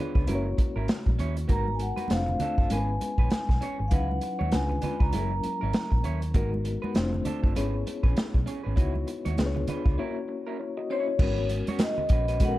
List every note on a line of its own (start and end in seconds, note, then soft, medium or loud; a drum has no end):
0.00 0.17 B3 medium
0.00 0.12 D4 medium
0.00 0.18 D4 medium
0.00 0.13 F4 medium
0.00 0.18 F4 medium
0.00 0.18 G#4 medium
0.00 0.13 B4 medium
0.00 0.18 C#5 medium
0.15 0.26 C#2 medium
0.15 0.26 D4 soft
0.15 0.26 F4 soft
0.15 0.25 B4 soft
0.15 kick medium
0.27 0.54 F#1 loud
0.27 1.04 A#3 medium
0.27 0.45 C#4 medium
0.27 1.05 C#4 medium
0.27 1.05 E4 medium
0.27 0.46 E4 medium
0.27 1.05 F#4 medium
0.27 0.46 A#4 medium
0.27 0.36 B4 medium
0.27 closed hi-hat medium
0.27 muted conga soft
0.27 high conga medium
0.35 1.09 C#5 medium
0.57 muted clean electric guitar stroke soft
0.57 muted fingered electric bass stroke soft
0.57 kick medium
0.57 closed hi-hat medium
0.57 muted conga soft
0.57 high conga soft
0.76 0.87 G#1 medium
0.76 0.87 C#4 soft
0.76 0.86 E4 soft
0.76 0.86 A#4 soft
0.88 snare loud
0.88 closed hi-hat medium
1.06 1.17 A#1 medium
1.06 muted clean electric guitar stroke soft
1.06 kick medium
1.06 high conga medium
1.19 1.45 D#2 medium
1.19 1.37 C#4 medium
1.19 1.36 E4 medium
1.19 1.36 C#5 medium
1.19 closed hi-hat medium
1.19 muted conga soft
1.36 muted clean electric guitar stroke soft
1.36 closed hi-hat medium
1.48 1.91 G#1 medium
1.48 2.09 G#3 medium
1.48 1.57 A#3 soft
1.48 1.66 B3 medium
1.48 2.10 D#4 medium
1.48 1.67 F#4 medium
1.48 2.10 F#4 medium
1.48 1.65 A#4 medium
1.48 2.10 A#4 medium
1.48 1.73 A#5 medium
1.48 kick loud
1.48 closed hi-hat medium
1.48 low conga medium
1.55 2.13 B3 medium
1.67 muted clean electric guitar stroke soft
1.67 high conga medium
1.75 1.80 G#5 medium
1.79 2.12 F#5 medium
1.79 muted clean electric guitar stroke soft
1.79 closed hi-hat medium
1.96 2.08 B3 soft
1.96 2.08 F#4 soft
1.96 2.07 B4 medium
1.96 closed hi-hat soft
1.96 high conga medium
2.08 2.36 F1 medium
2.08 2.60 A3 medium
2.08 2.60 C4 medium
2.08 2.60 D4 medium
2.08 2.61 F4 medium
2.08 2.61 C5 medium
2.08 muted clean electric guitar stroke soft
2.08 snare medium
2.08 closed hi-hat medium
2.08 muted conga soft
2.08 high conga medium
2.12 2.68 F5 medium
2.26 muted clean electric guitar stroke soft
2.26 low conga medium
2.40 2.54 D4 medium
2.40 2.55 F4 medium
2.40 2.55 A4 medium
2.40 muted fingered electric bass stroke soft
2.40 closed hi-hat medium
2.40 low conga medium
2.58 2.69 G1 medium
2.58 2.69 D4 soft
2.58 2.69 F4 soft
2.58 2.68 A4 medium
2.58 kick medium
2.70 2.97 G#1 medium
2.70 3.48 G#3 medium
2.70 3.48 B3 medium
2.70 2.88 C#4 medium
2.70 3.48 C#4 medium
2.70 3.48 E4 medium
2.70 2.89 G#4 medium
2.70 2.79 A#4 medium
2.70 2.89 B4 medium
2.70 3.32 G#5 medium
2.70 closed hi-hat medium
2.70 muted conga soft
2.70 high conga medium
2.78 3.52 B4 medium
3.01 muted clean electric guitar stroke soft
3.01 closed hi-hat medium
3.01 muted conga soft
3.01 high conga soft
3.18 3.29 A#1 medium
3.18 3.30 C#4 soft
3.18 3.30 G#4 soft
3.18 3.29 B4 soft
3.18 kick medium
3.30 3.89 G#5 medium
3.30 muted clean electric guitar stroke soft
3.30 muted fingered electric bass stroke soft
3.30 snare loud
3.30 closed hi-hat medium
3.30 muted conga soft
3.49 3.60 B1 medium
3.49 muted clean electric guitar stroke soft
3.49 kick medium
3.49 snare soft
3.49 high conga medium
3.61 3.79 C#4 medium
3.61 3.79 G#4 medium
3.61 3.79 C#5 medium
3.61 closed hi-hat medium
3.61 muted conga soft
3.79 3.90 G#1 medium
3.79 muted clean electric guitar stroke soft
3.88 4.52 F#3 medium
3.88 4.52 C#4 medium
3.88 4.52 D#4 medium
3.88 4.52 E4 medium
3.88 4.10 E4 medium
3.88 3.93 F5 medium
3.88 kick loud
3.88 closed hi-hat medium
3.92 4.18 C#2 medium
3.92 4.10 F#4 medium
3.92 4.53 B4 medium
3.92 4.08 B4 medium
3.92 4.55 F#5 medium
3.92 muted conga soft
3.92 low conga medium
4.09 muted clean electric guitar stroke soft
4.09 high conga medium
4.21 muted clean electric guitar stroke soft
4.21 closed hi-hat medium
4.21 muted conga soft
4.39 4.51 D#2 medium
4.39 4.50 E4 soft
4.39 4.50 F#4 soft
4.39 4.50 C#5 medium
4.39 high conga medium
4.52 4.79 C#2 medium
4.52 5.03 G#3 medium
4.52 5.03 C#4 medium
4.52 5.03 D4 medium
4.52 5.04 F4 medium
4.52 5.04 B4 medium
4.52 5.02 G#5 medium
4.52 muted clean electric guitar stroke soft
4.52 snare medium
4.52 closed hi-hat medium
4.52 muted conga soft
4.52 high conga medium
4.69 muted clean electric guitar stroke soft
4.69 low conga medium
4.82 4.96 D4 medium
4.82 4.97 F4 medium
4.82 4.97 B4 medium
4.82 muted fingered electric bass stroke soft
4.82 closed hi-hat medium
4.82 low conga medium
5.00 5.12 C#2 medium
5.00 5.11 D4 soft
5.00 5.11 F4 soft
5.00 5.10 B4 soft
5.00 6.01 A#5 medium
5.00 kick medium
5.12 5.40 F#1 medium
5.12 5.90 F#3 medium
5.12 5.90 A#3 medium
5.12 5.31 C#4 medium
5.12 5.90 C#4 medium
5.12 5.90 E4 medium
5.12 5.31 E4 medium
5.12 5.21 G#4 medium
5.12 5.32 A#4 medium
5.12 closed hi-hat medium
5.12 muted conga soft
5.12 high conga medium
5.20 5.94 A#4 medium
5.43 muted clean electric guitar stroke soft
5.43 muted fingered electric bass stroke soft
5.43 closed hi-hat medium
5.43 muted conga soft
5.43 high conga soft
5.61 5.73 G#1 medium
5.61 5.72 C#4 soft
5.61 5.72 E4 soft
5.61 5.71 A#4 medium
5.73 muted clean electric guitar stroke soft
5.73 snare medium
5.73 closed hi-hat medium
5.91 6.03 A#1 medium
5.91 muted clean electric guitar stroke soft
5.91 kick medium
5.91 high conga medium
6.04 6.37 D#2 medium
6.04 6.22 C#4 medium
6.04 6.21 E4 medium
6.04 6.21 C#5 medium
6.04 closed hi-hat medium
6.04 muted conga soft
6.21 muted clean electric guitar stroke soft
6.21 closed hi-hat medium
6.34 6.76 G#1 medium
6.34 6.95 G#3 medium
6.34 6.42 A#3 medium
6.34 6.52 B3 medium
6.34 6.96 D#4 medium
6.34 6.51 F#4 medium
6.34 6.96 F#4 medium
6.34 6.51 A#4 medium
6.34 6.96 A#4 medium
6.34 kick loud
6.34 closed hi-hat medium
6.34 muted conga soft
6.34 low conga medium
6.42 6.99 B3 medium
6.52 muted clean electric guitar stroke soft
6.52 high conga medium
6.64 muted clean electric guitar stroke soft
6.64 closed hi-hat medium
6.64 muted conga soft
6.82 6.93 B3 soft
6.82 6.93 F#4 soft
6.82 6.92 B4 medium
6.82 high conga medium
6.94 7.22 F1 medium
6.94 7.45 A3 medium
6.94 7.46 C4 medium
6.94 7.46 D4 medium
6.94 7.46 F4 medium
6.94 7.46 C5 medium
6.94 muted clean electric guitar stroke soft
6.94 snare medium
6.94 closed hi-hat medium
6.94 muted conga soft
6.94 high conga medium
7.13 muted clean electric guitar stroke soft
7.13 low conga medium
7.25 7.39 D4 medium
7.25 7.40 F4 medium
7.25 7.40 A4 medium
7.25 muted fingered electric bass stroke soft
7.25 closed hi-hat medium
7.25 muted conga soft
7.25 low conga medium
7.43 7.55 G1 medium
7.43 7.54 D4 soft
7.43 7.53 F4 soft
7.43 7.53 A4 soft
7.43 kick medium
7.55 7.83 G#1 medium
7.55 8.33 B3 medium
7.55 7.73 C#4 medium
7.55 8.33 C#4 medium
7.55 8.34 E4 medium
7.55 7.74 G#4 medium
7.55 8.34 G#4 medium
7.55 7.74 B4 medium
7.55 8.34 C#5 medium
7.55 closed hi-hat medium
7.55 high conga medium
7.86 muted clean electric guitar stroke soft
7.86 closed hi-hat medium
7.86 muted conga soft
7.86 high conga soft
8.03 8.15 A#1 medium
8.03 8.15 C#4 soft
8.03 8.14 G#4 soft
8.03 8.14 B4 soft
8.03 kick medium
8.17 muted clean electric guitar stroke soft
8.17 snare loud
8.17 closed hi-hat medium
8.17 muted conga soft
8.34 8.45 B1 medium
8.34 muted clean electric guitar stroke soft
8.34 kick medium
8.34 high conga medium
8.46 8.60 C#4 medium
8.46 8.61 G#4 medium
8.46 8.61 C#5 medium
8.46 closed hi-hat medium
8.46 muted conga soft
8.64 8.76 G#1 medium
8.64 8.75 C#4 soft
8.64 8.74 G#4 soft
8.64 8.74 B4 soft
8.76 9.03 C#2 medium
8.76 9.37 B3 medium
8.76 9.37 D#4 medium
8.76 8.94 E4 medium
8.76 9.37 E4 medium
8.76 8.94 F#4 medium
8.76 9.38 F#4 medium
8.76 8.93 B4 medium
8.76 9.38 C#5 medium
8.76 kick loud
8.76 closed hi-hat medium
8.76 muted conga soft
8.76 low conga medium
8.94 muted clean electric guitar stroke soft
8.94 high conga medium
9.07 muted clean electric guitar stroke soft
9.07 closed hi-hat medium
9.25 9.36 D#2 medium
9.25 9.36 E4 soft
9.25 9.36 F#4 soft
9.25 9.35 C#5 soft
9.25 closed hi-hat soft
9.25 high conga medium
9.37 9.64 C#2 medium
9.37 9.88 B3 medium
9.37 9.89 D4 medium
9.37 9.89 F4 medium
9.37 9.89 G#4 medium
9.37 9.46 B4 medium
9.37 muted clean electric guitar stroke soft
9.37 snare medium
9.37 closed hi-hat medium
9.37 muted conga soft
9.37 high conga medium
9.46 9.92 C#5 medium
9.55 muted clean electric guitar stroke soft
9.55 low conga medium
9.67 9.82 D4 soft
9.67 9.82 F4 medium
9.67 9.83 B4 medium
9.67 muted fingered electric bass stroke soft
9.67 closed hi-hat medium
9.67 muted conga soft
9.67 low conga medium
9.84 9.97 C#2 medium
9.84 9.96 D4 soft
9.84 9.96 F4 soft
9.84 9.95 B4 soft
9.84 kick medium
9.98 10.75 A#3 medium
9.98 10.16 C#4 medium
9.98 10.75 C#4 medium
9.98 10.59 E4 medium
9.98 10.16 E4 medium
9.98 10.59 F#4 medium
9.98 10.17 A#4 medium
9.98 10.58 C#5 medium
10.28 muted clean electric guitar stroke soft
10.47 10.57 C#4 soft
10.47 10.57 E4 soft
10.47 10.56 A#4 soft
10.60 10.76 E4 soft
10.60 10.76 C#5 medium
10.60 muted clean electric guitar stroke soft
10.77 11.05 F#4 medium
10.77 11.06 D#5 medium
10.77 muted clean electric guitar stroke soft
10.90 11.11 C#4 medium
10.90 11.08 E4 medium
10.90 11.46 C#5 loud
10.90 11.08 C#5 medium
11.07 11.36 E4 soft
11.07 11.35 C#5 medium
11.07 muted clean electric guitar stroke soft
11.19 11.61 G#1 medium
11.19 11.96 G#3 medium
11.19 11.96 B3 medium
11.19 11.96 C#4 medium
11.19 11.38 C#4 medium
11.19 11.97 F#4 medium
11.19 11.38 F#4 medium
11.19 11.97 A#4 medium
11.19 11.38 B4 medium
11.19 kick loud
11.19 crash loud
11.19 low conga medium
11.38 muted clean electric guitar stroke soft
11.38 high conga medium
11.49 muted clean electric guitar stroke soft
11.49 closed hi-hat medium
11.49 muted conga soft
11.67 11.79 C#4 soft
11.67 11.79 F#4 medium
11.67 11.78 C#5 medium
11.67 closed hi-hat medium
11.67 high conga medium
11.79 12.43 D#5 medium
11.79 muted clean electric guitar stroke soft
11.79 snare medium
11.79 clap medium
11.79 closed hi-hat medium
11.79 muted conga soft
11.79 high conga medium
11.98 muted clean electric guitar stroke soft
11.98 low conga medium
12.09 12.59 A#1 medium
12.09 12.25 C#4 medium
12.09 12.25 F#4 medium
12.09 12.25 B4 medium
12.09 kick loud
12.09 closed hi-hat medium
12.09 muted conga soft
12.28 12.39 C#4 soft
12.28 12.39 F#4 medium
12.28 12.38 B4 medium
12.28 closed hi-hat medium
12.40 12.59 G#3 medium
12.40 12.59 B3 medium
12.40 12.58 C#4 medium
12.40 12.59 C#4 medium
12.40 12.59 F#4 medium
12.40 12.49 A4 medium
12.40 12.59 B4 medium
12.40 kick medium
12.40 closed hi-hat medium
12.40 muted conga soft
12.40 high conga medium
12.45 12.59 A#4 medium
12.45 12.59 F#5 loud